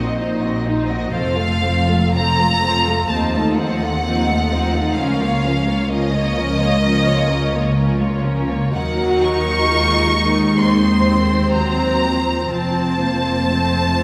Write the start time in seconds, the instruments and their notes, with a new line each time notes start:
Already playing: double bass section A#1, cello section A#2, viola section C4, violin section F#4 D#5
0.19 violin section D#4 C5, viola section D#4
0.42 viola section C4, violin section F#4 D#5
0.66 violin section D#4 C5, viola section D#4
0.88 viola section C4, violin section F#4 D#5
1.12 double bass section F1, cello section F2, viola section F3 C4, violin section A4 C5 F5
1.35 viola section A3, violin section F4 A4
1.63 viola section F3 C4, violin section A4 C5
1.89 viola section A3, violin section F4 A4
2.15 viola section F3 C4, violin section A4 C5 A#5
2.41 viola section A3, violin section F4 A4
2.64 viola section F3 C4, violin section A4 C5
2.88 viola section A3, violin section F4 A4
3.09 double bass section D#2, cello section D#2, viola section F3 C4, violin section D#4 C5 A5
3.34 viola section A3 D#4, violin section F4 A4
3.56 viola section F3 C4, violin section D#4 C5 F#5
3.81 viola section A3 D#4, violin section F4 A4
4.05 viola section F3 C4, violin section D#4 C5
4.30 viola section A3 D#4, violin section F4 A4
4.52 viola section F3 C4, violin section D#4 C5
4.74 viola section A3 D#4, violin section F4 A4
4.95 cello section C#2, double bass section C#2, viola section F3 C#4, violin section C#4 A#4 F5
5.21 viola section A#3, violin section F4 C#5
5.44 viola section F3 C#4, violin section C#4 A#4
5.68 viola section A#3, violin section F4 C#5
5.89 viola section F3 C#4, violin section C#4 A#4 D#5
6.13 viola section A#3, violin section F4 C#5
6.36 viola section F3 C#4, violin section C#4 A#4
6.58 viola section A#3, violin section F4 C#5
6.81 viola section F3 C#4, violin section C#4 A#4
7.05 viola section A#3, violin section F4 C#5
7.29 viola section F3 C#4, violin section C#4 A#4
7.54 viola section A#3, violin section F4 C#5
7.76 viola section F3 C#4, violin section C#4 A#4
7.98 viola section A#3, violin section F4 C#5
8.22 viola section F3 C#4, violin section C#4 A#4
8.48 viola section A#3, violin section F4 C#5
8.73 cello section D#2, double bass section D#2, viola section F#3 F#4, violin section D#4 A#4 F#5
9.22 violin section C#6
9.71 viola section G#3 F4
10.18 viola section D#4
10.61 viola section D#4, violin section C5 C6
10.65 violin section C4
11.10 viola section C4
11.54 viola section F#3, violin section A#5
12.04 viola section F3
12.49 double bass section F1, cello section F2, viola section C4, violin section A5
12.54 violin section C4 C5
13.00 viola section A#3
13.48 viola section F3 A3